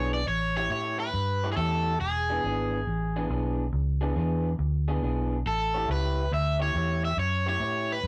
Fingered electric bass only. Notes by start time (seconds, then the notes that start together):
Already playing: B1
0.27 A1
0.70 A2
1.14 G2
1.56 E2
2.00 E1
2.44 G#1
2.87 A1
3.30 B1
3.72 C#2
4.16 E2
4.59 D2
5.02 B1
5.46 A1
5.88 C#2
6.32 D2
6.74 E2
7.17 F#2
7.60 A2
8.03 G2